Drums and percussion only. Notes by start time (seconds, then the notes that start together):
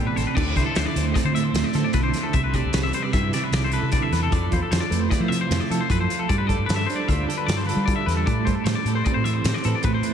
0.17 snare, closed hi-hat
0.37 kick, crash
0.56 kick, snare, closed hi-hat
0.75 snare, closed hi-hat
0.96 closed hi-hat
1.15 kick, snare, closed hi-hat
1.36 closed hi-hat
1.55 snare, closed hi-hat
1.73 snare, closed hi-hat
1.93 kick, snare, closed hi-hat
2.14 snare, closed hi-hat
2.33 kick, closed hi-hat
2.54 kick, closed hi-hat
2.73 snare, closed hi-hat
2.93 closed hi-hat
3.13 kick, closed hi-hat
3.33 snare, closed hi-hat
3.53 snare, closed hi-hat
3.72 closed hi-hat
3.92 kick, snare, closed hi-hat
4.13 snare, closed hi-hat
4.32 kick, closed hi-hat
4.52 kick, closed hi-hat
4.72 snare, closed hi-hat
4.92 closed hi-hat
5.11 kick, snare, closed hi-hat
5.32 closed hi-hat
5.51 snare, closed hi-hat
5.71 closed hi-hat
5.90 kick, closed hi-hat
6.10 closed hi-hat
6.30 kick, closed hi-hat
6.49 kick, closed hi-hat
6.69 snare, closed hi-hat
6.90 closed hi-hat
7.09 kick, closed hi-hat
7.30 closed hi-hat
7.48 snare, closed hi-hat
7.69 closed hi-hat
7.88 kick, closed hi-hat
8.08 snare, closed hi-hat
8.27 kick, closed hi-hat
8.47 kick, closed hi-hat
8.66 snare, closed hi-hat
8.86 closed hi-hat
9.06 kick, closed hi-hat
9.25 closed hi-hat
9.44 snare, closed hi-hat
9.64 closed hi-hat
9.83 kick, closed hi-hat
10.03 closed hi-hat